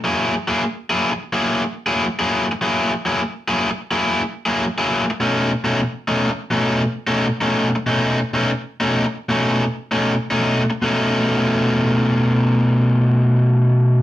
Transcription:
X:1
M:4/4
L:1/16
Q:"Swing" 1/4=91
K:Bmix
V:1 name="Overdriven electric guitar"
[F,^A,EG] z [F,A,EG] z2 [F,A,EG] z2 [F,A,EG] z2 [F,A,EG] z [F,A,EG] z2 | [F,^A,EG] z [F,A,EG] z2 [F,A,EG] z2 [F,A,EG] z2 [F,A,EG] z [F,A,EG] z2 | [B,,A,CD] z [B,,A,CD] z2 [B,,A,CD] z2 [B,,A,CD] z2 [B,,A,CD] z [B,,A,CD] z2 | [B,,A,CD] z [B,,A,CD] z2 [B,,A,CD] z2 [B,,A,CD] z2 [B,,A,CD] z [B,,A,CD] z2 |
[B,,A,CD]16 |]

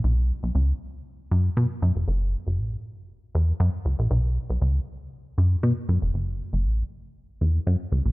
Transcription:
X:1
M:4/4
L:1/16
Q:1/4=118
K:F#m
V:1 name="Analog synth bass" clef=bass
B,,,3 B,,, C,,2 z4 F,,2 B,, z F,, ^E,,, | F,,,3 F,,, A,,,2 z4 E,,2 F,, z C,, ^A,,, | B,,,3 B,,, C,,2 z4 F,,2 B,, z F,, ^E,,, | F,,,3 F,,, A,,,2 z4 E,,2 F,, z C,, ^A,,, |]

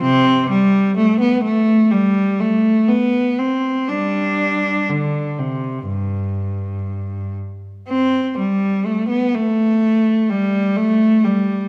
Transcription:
X:1
M:4/4
L:1/16
Q:1/4=62
K:Gmix
V:1 name="Cello"
[C,C]2 G,2 A, B, A,2 G,2 A,2 B,2 C2 | [G,D]4 D,2 C,2 G,,6 z2 | C2 G,2 A, B, A,4 G,2 A,2 G,2 |]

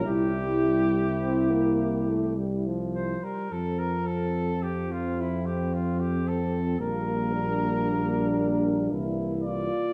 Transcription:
X:1
M:3/4
L:1/16
Q:1/4=54
K:F
V:1 name="Cornet"
G8 z2 c B | A B A2 G F E G F G A2 | B8 z2 d2 |]
V:2 name="French horn section"
E8- E2 z2 | z4 C8 | B,2 D6 E2 F2 |]
V:3 name="Euphonium"
E8- E2 z2 | C12 | B,12 |]
V:4 name="Trombone" clef=bass
G,4 C B,2 A, G, F,2 G, | F,12 | G,8 E,3 z |]
V:5 name="Tuba" clef=bass
C,,8- C,,2 z2 | F,,12 | B,,,8 C,,3 z |]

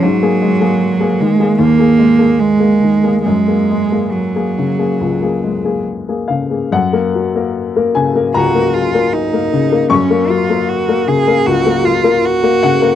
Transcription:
X:1
M:4/4
L:1/16
Q:1/4=76
K:F#
V:1 name="Cello"
F,6 G,2 A,4 G,4 | G,4 F,8 z4 | z8 F2 E2 D4 | C2 E2 F2 G2 F2 E2 F4 |]
V:2 name="Upright piano"
z16 | z12 z2 e2 | f6 g2 a8 | c'12 z2 f2 |]
V:3 name="Upright piano"
G,, [A,G] G, [A,G]2 [A,G] D, [A,G] D,, [A,G] G, [A,G]2 [A,G] D, [A,G] | F,, [A,G] G, [A,G]2 [A,G] C, [A,G] C,, [A,G] G, [A,G]2 [A,G] C, [A,G] | F,, [A,A] F, [A,A]2 [A,A] C, [A,A] C,, [A,A] F, [A,A]2 [A,A] C, [A,A] | F,, [A,A] F, [A,A]2 [A,A] C, [A,A] C,, [A,A] F, [A,A]2 [A,A] C, [A,A] |]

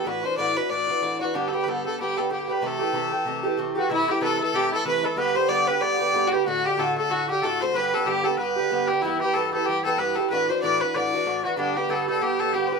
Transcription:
X:1
M:4/4
L:1/16
Q:"Swing" 1/4=188
K:Ador
V:1 name="Fiddle"
B2 c2 d2 B2 d6 F2 | D3/2 A/2 G3/2 B/2 A2 A2 G2 A2 G2 B2 | A12 z2 F2 | E2 G3/2 B/2 A2 A2 G2 A2 B2 A2 |
B2 c2 d2 B2 d4- d3/2 F/2 G2 | F2 G2 A2 A2 F2 G2 A2 c2 | B2 A2 G2 A2 B6 G2 | E2 G2 A2 A2 G2 A2 B2 A2 |
B2 c2 d2 B2 d6 F2 | D2 G2 A2 A2 G2 A2 G3/2 c/2 B2 |]
V:2 name="Oboe"
z16 | z16 | z12 z2 F2 | E2 G2 A2 A2 G2 A2 B2 A2 |
B2 c2 d2 B2 d6 G2 | F2 G2 A2 A2 F2 G2 A2 c2 | B4 G2 A2 B6 G2 | E2 G2 A2 A2 G2 A2 B2 z2 |
B2 c2 d2 B2 d6 F2 | D2 G2 A2 A2 G2 A2 G4 |]
V:3 name="Bouzouki"
[A,,E,DF]2 [E,DF]2 [A,,E,DF]2 [E,DF]2 [A,,E,DF]2 [E,DF]2 [A,,E,DF]2 [E,DF]2 | [G,,D,B,G]2 [D,B,G]2 [G,,D,B,G]2 [D,B,G]2 [G,,D,B,G]2 [D,B,G]2 [G,,D,B,G]2 [D,B,G]2 | [C,E,A,G]2 [E,A,G]2 [C,E,A,G]2 [E,A,G]2 [C,E,A,G]2 [E,A,G]2 [C,E,A,G]2 [E,A,G]2 | [C,E,A,E]2 [E,A,E]2 [C,E,A,E]2 [E,A,E]2 [C,E,A,E]2 [E,A,E]2 [C,E,A,E]2 [E,A,E]2 |
[G,,D,B,G]2 [D,B,G]2 [G,,D,B,G]2 [D,B,G]2 [G,,D,B,G]2 [D,B,G]2 [G,,D,B,G]2 [D,B,G]2 | [A,,D,A,F]2 [D,A,F]2 [A,,D,A,F]2 [D,A,F]2 [A,,D,A,F]2 [D,A,F]2 [A,,D,A,F]2 [D,A,F]2 | [G,,D,B,G]2 [D,B,G]2 [G,,D,B,G]2 [D,B,G]2 [G,,D,B,G]2 [D,B,G]2 [G,,D,B,G]2 [D,B,G]2 | [G,,E,B,G]2 [E,B,G]2 [G,,E,B,G]2 [E,B,G]2 [G,,E,B,G]2 [E,B,G]2 [G,,E,B,G]2 [E,B,G]2 |
[A,,E,DF]2 [E,DF]2 [A,,E,DF]2 [E,DF]2 [A,,E,DF]2 [E,DF]2 [A,,E,DF]2 [E,DF]2 | [G,,D,B,G]2 [D,B,G]2 [G,,D,B,G]2 [D,B,G]2 [G,,D,B,G]2 [D,B,G]2 [G,,D,B,G]2 [D,B,G]2 |]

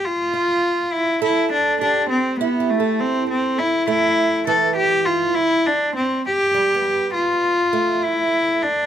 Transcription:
X:1
M:3/4
L:1/16
Q:1/4=101
K:Flyd
V:1 name="Cello"
F6 E2 E2 D2 | D2 C2 B,2 A,2 C2 C2 | E2 E4 A2 G2 F2 | E2 D2 C2 G6 |
F6 E4 D2 |]
V:2 name="Steel-string acoustic guitar"
z2 F6 A4 | G4 E G A6 | z2 A,4 E,6 | z8 G, B,3- |
B,3 z A,6 z2 |]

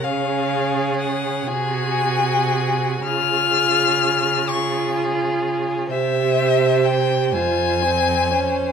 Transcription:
X:1
M:6/8
L:1/8
Q:3/8=42
K:Db
V:1 name="Violin"
f2 g a3 | f'3 d' z2 | =e2 =g a3 |]
V:2 name="Violin"
A3 A3 | A3 A3 | c3 c3 |]
V:3 name="Viola"
D3 G3 | F3 F3 | =G3 F C D |]
V:4 name="Cello" clef=bass
D,3 C,3 | D,6 | C,3 F,,3 |]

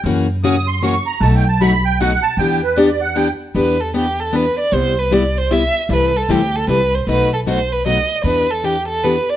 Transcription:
X:1
M:3/4
L:1/16
Q:"Swing" 1/4=153
K:Em
V:1 name="Accordion"
z4 ^d'2 c'2 ^c'2 ^a2 | (3a2 g2 a2 b2 g2 f2 a2 | g2 B2 d2 f2 g2 z2 | z12 |
z12 | z12 | z12 | z12 |]
V:2 name="Violin"
z12 | z12 | z12 | B2 A2 G2 A2 B2 d2 |
c2 B2 d2 c2 e3 z | B2 A2 G2 A2 B2 c2 | B2 A2 c2 B2 ^d3 z | B2 A2 G2 A2 B2 d2 |]
V:3 name="Steel-string acoustic guitar"
[^C,E,^A,^CF]2 z2 [C,E,A,CF]2 z2 [C,E,A,CF]2 z2 | [B,,F,A,^DF]2 z2 [B,,F,A,DF]2 z2 [B,,F,A,DF]2 z2 | [E,B,DG]2 z2 [E,B,DG]2 z2 [E,B,DG]2 z2 | [E,B,DG]2 z2 [E,B,DG]2 z2 [E,B,DG]2 z2 |
[C,G,B,EG]2 z2 [C,G,B,EG]2 z2 [C,G,B,EG]2 z2 | [C,E,G,CEA]2 z2 [C,E,G,CEA]2 z2 [C,E,G,CEA]2 z2 | [B,,F,A,^DF]2 z2 [B,,F,A,DF]2 z2 [B,,F,A,DF]2 z2 | [E,B,DG]2 z2 [E,B,DG]2 z2 [E,B,DG]2 z2 |]
V:4 name="Upright bass" clef=bass
F,,12 | B,,,12 | E,,12 | E,,12 |
C,,12 | C,,4 D,,4 C,,4 | B,,,12 | E,,12 |]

